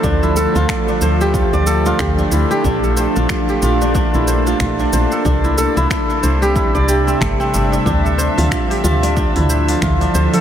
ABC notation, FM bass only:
X:1
M:4/4
L:1/16
Q:"Swing 16ths" 1/4=92
K:Dm
V:1 name="FM bass" clef=bass
D,,3 D,, z2 D,,3 D,,3 D,, z D,, z | B,,,3 B,,, z2 B,,,3 B,,,3 B,,, z B,,, z | C,,3 C,, z2 C,,3 C,,3 G,,, z G,,, z | D,,3 D,, z2 D,,3 D,,3 D,, z D,, z |]